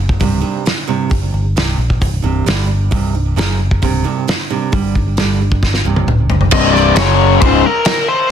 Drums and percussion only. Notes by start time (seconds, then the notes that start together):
0.09 kick
0.21 kick, open hi-hat
0.66 snare, open hi-hat
1.11 kick, open hi-hat
1.57 snare, open hi-hat
1.90 kick
2.02 kick, open hi-hat
2.47 snare, open hi-hat
2.92 kick, open hi-hat
3.38 snare, open hi-hat
3.71 kick
3.83 kick, open hi-hat
4.28 snare, open hi-hat
4.73 kick, open hi-hat
4.95 kick
5.17 snare, open hi-hat
5.52 kick
5.63 kick, snare
5.74 snare
5.96 high tom
6.08 mid tom
6.30 floor tom
6.41 floor tom
6.51 kick, crash
6.75 snare
6.96 snare, crash
7.41 kick, crash
7.85 snare, crash